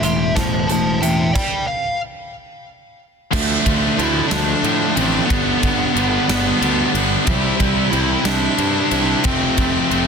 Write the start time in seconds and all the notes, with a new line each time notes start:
Already playing: A3
0.03 E1 A2 E3 A3 E5 C6, closed hi-hat
0.35 E1 A2 E3 A3 C5 A5, kick, snare, closed hi-hat
0.68 E1 A2 E3 A3 C4 C5 A5, closed hi-hat
1.01 E1 A2 E3 A3 E4 E5 G5, closed hi-hat
1.33 D5 G5, kick, crash
1.67 F5
3.31 D2 D3 F3 A3 D4, kick, crash
3.35 F3 A4 D5 A5
3.65 D2 F3 A3 D4, kick, ride
3.98 D2 D3 F3 A3 D4 E4, ride
4.28 D2 D4, snare, ride
4.33 F3 A3
4.63 A2 D3 F3 A3 D4, ride
4.95 A1 A3 C4 D4, ride
4.99 F3
5.25 G2 D3 B3
5.29 G1 G3 B3 D4 G4 B4, kick, ride
5.35 G5
5.62 G1 G3 B3 D4, kick, ride
5.95 G1 D3 G3 B3 D4, ride
6.28 G1 G3 B3 D4, snare, ride
6.60 D2 D3 G3 B3 D4, ride
6.94 G1 G3 B3 D4, ride
7.27 C2 C3 G3 C4 E4 C5, kick, ride
7.59 C2 G3 C4 E4, kick, ride
7.90 C2 C3 G3 C4 E4, ride
8.24 C2 G3 C4 D4 E4, snare, ride
8.57 G2 C3 G3 C4 E4, ride
8.91 C2 G3 C4 E4, ride
9.24 F1 F2 C3 F3 A3 C4 A4 A5, kick, ride
9.56 F1 F3 A3 C4, kick, ride
9.89 F1 C3 F3 A3 C4, ride